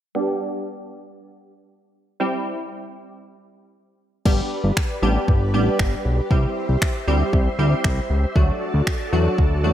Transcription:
0.15 G3 B3 D4 G4
2.20 G3 C4 E4 G4
4.25 G1 G3 B3 D4 G4 B4 D5 B5, kick, crash
4.64 G1
4.77 finger snap, kick
5.02 A1 G3 B3 D4 G4
5.28 G1, kick
5.54 A1 G3 B3 D4 G4
5.79 G1, finger snap, kick
6.05 B1
6.30 C2 G3 C4 E4 G4 C5 E5 C6, kick
6.69 C2
6.82 finger snap, kick
7.07 D2 G3 C4 E4 G4
7.33 C2, kick
7.59 D2 G3 C4 E4 G4
7.84 C2, finger snap, kick
8.10 C#2
8.36 D2 F#3 A3 D4 F#4 A4 D5 A5, kick
8.74 D2
8.87 finger snap, kick
9.13 E2 F#3 A3 D4 F#4
9.38 D2, kick
9.64 E2 F#3 A3 D4 F#4

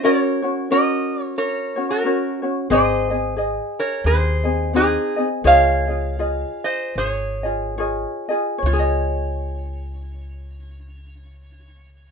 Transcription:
0.03 C#4 F#4 A#4 C#5
0.42 C#4 F#4 C#5
0.70 C#4 F#4 A#4 C#5 D#5
1.23 C#5
1.38 A#4 C#5
1.76 C#4 F#4 C#5
1.91 F#4 A#4
2.04 C#4 F#4 A#4 C#5
2.42 C#4 F#4 C#5
2.70 G#1 C4 G#4 C5 D#5
3.10 C4 G#4 D#5
3.37 G#4 D#5
3.79 A#4 C#5
4.04 D#2 G#4 C5
4.44 C4 G#4 D#5
4.73 C4 D#4 G#4 C5 D#5
5.16 C4 G#4 D#5
5.44 C#2 F4 G#4 C#5 D#5 F5
5.87 F4 G#4 D#5
6.19 F4 G#4 D#5
6.64 C5 D#5
6.96 G#1 G#4 C#5
7.43 F4 G#4 D#5
7.78 F4 G#4 C#5 D#5
8.29 F4 G#4 D#5
8.58 C#5
8.63 C#2 F4 C#5
8.73 G#4
8.79 D#5

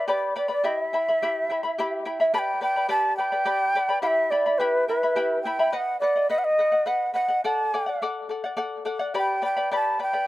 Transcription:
0.08 G4 B4 D5 G5 B5
0.36 B4 D5 G5 B5
0.48 B4 D5 B5
0.64 E4 G4 D#5 E5 G5 B5
0.82 E5
0.93 E4 E5 G5 B5
1.08 E4 E5 B5
1.22 E4 G4 E5 G5 B5
1.50 E4 E5 G5 B5
1.63 E4 E5 B5
1.78 E4 G4 E5 G5 B5
2.05 E4 E5 G5 B5
2.20 E4 E5 B5
2.34 G4 B4 D5 G5 A5 B5
2.39 G5
2.61 B4 D5 G5 B5
2.76 B4 D5 B5
2.89 G4 B4 D5 G5 A5 B5
3.17 B4 D5 G5 B5
3.32 B4 D5 B5
3.45 G4 B4 D5 G5 B5
3.75 B4 D5 G5 B5
3.89 B4 D5 B5
4.02 E4 G4 E5 F#5 G5 B5
4.07 E5
4.31 E4 D5 E5 G5 B5
4.46 E4 E5 B5
4.58 E4 G4 B4 E5 G5 B5
4.88 E4 B4 E5 G5 B5
5.03 E4 E5 B5
5.16 E4 G4 E5 G5 B5
5.43 E4 E5 G5 B5
5.59 E4 E5 B5
5.71 B4 D#5 F#5 G5
5.76 F#5
6.00 B4 D5 D#5 F#5
6.16 D#5 F#5
6.29 B4 D#5 F#5
6.39 F#5
6.44 D#5
6.59 B4 D#5 F#5
6.72 D#5 F#5
6.86 B4 D#5 F#5
7.14 B4 D#5 F#5
7.28 D#5 F#5
7.44 A4 D5 F#5 A5
7.74 A4 D5 F#5
7.86 D5 F#5
8.02 A4 D5 F#5
8.29 A4 D5 F#5
8.44 D5 F#5
8.57 A4 D5 F#5
8.85 A4 D5 F#5
8.99 D5 F#5
9.14 G4 B4 D5 G5 B5
9.18 G5
9.42 B4 D5 G5 B5
9.57 B4 D5 B5
9.71 G4 B4 D5 G5 B5
9.76 A5
9.99 B4 D5 G5 B5
10.13 B4 D5 B5

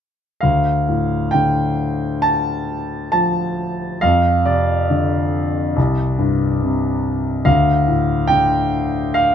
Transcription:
0.41 D2 F5
0.89 A2
1.31 D3 G5
2.22 A5
3.12 F3 A5
4.01 F2 F5
4.45 C3 D5
4.90 D3
5.76 C2
6.19 G2
6.62 C3
7.45 D2 F5
7.87 A2
8.28 D3 G5
9.14 F5

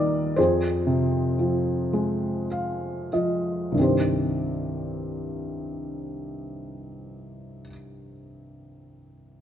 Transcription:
Already playing: D#2 A#2 D#3 G3 A#4 D5 D#5
0.36 F2 G#4 C5
0.87 C3
1.39 F3
1.93 G#3
2.51 F5
3.13 F3 D#5
3.72 C2 G2
3.77 D#3 C4
3.81 G4 C5

